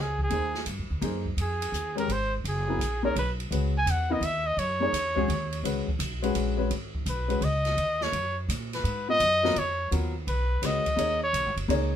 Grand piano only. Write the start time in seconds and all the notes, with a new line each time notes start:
0.30 A#3 D#4 G#4 C5
1.01 A#3 D#4 G#4 C5
1.96 G#3 C#4 G4 A#4
2.68 F#3 B3 E4 A#4
3.03 A#3 D#4 G#4 C#5
3.51 G#3 C#4 F#4 B4
4.10 B3 E4 A#4 D#5
4.80 A#3 D#4 G#4 C#5
5.16 G#3 C#4 F#4 G#4
5.64 G#3 C#4 F#4 B4
6.22 G#3 C#4 F#4 B4
6.57 G#3 C#4 F#4 B4
7.28 G#3 C#4 F#4 B4
9.08 B3 F4 A#4 D#5
9.43 F#3 B3 F4 A#4
9.91 F#3 B3 F4 A#4
10.62 G#3 C#4 F#4 B4
10.96 A#3 D#4 G#4 C#5
11.68 A#3 D#4 G#4 C#5